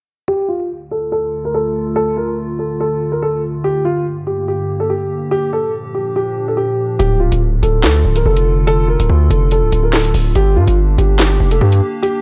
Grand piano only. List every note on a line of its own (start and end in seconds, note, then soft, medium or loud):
0.28 0.47 G4 loud
0.48 0.68 F4 medium
0.91 1.10 A4 medium
1.12 1.42 A4 medium
1.45 1.53 A#4 medium
1.54 1.94 A4 medium
1.96 2.15 A4 loud
2.17 2.36 A#4 medium
2.59 2.78 A4 medium
2.80 3.10 A4 medium
3.12 3.21 A#4 medium
3.23 3.41 A4 medium
3.64 3.83 G4 loud
3.85 4.04 F4 medium
4.27 4.46 G4 medium
4.48 4.78 G4 medium
4.80 4.89 A4 medium
4.90 5.29 G4 medium
5.31 5.50 G4 loud
5.53 5.72 A4 medium
5.95 6.13 G4 medium
6.16 6.46 G4 medium
6.48 6.57 A4 medium
6.57 6.97 G4 medium
6.99 7.18 G4 loud
7.20 7.39 F4 medium
7.63 7.81 A4 medium
7.83 8.14 A4 medium
8.16 8.25 A#4 medium
8.26 8.65 A4 medium
8.67 8.86 A4 loud
8.88 9.07 A#4 medium
9.30 9.49 A4 medium
9.52 9.82 A4 medium
9.83 9.92 A#4 medium
9.94 10.12 A4 medium
10.36 10.54 G4 loud
10.56 10.75 F4 medium
10.98 11.17 G4 medium
11.19 11.50 G4 medium
11.51 11.60 A4 medium
11.61 12.01 G4 medium
12.03 12.22 G4 loud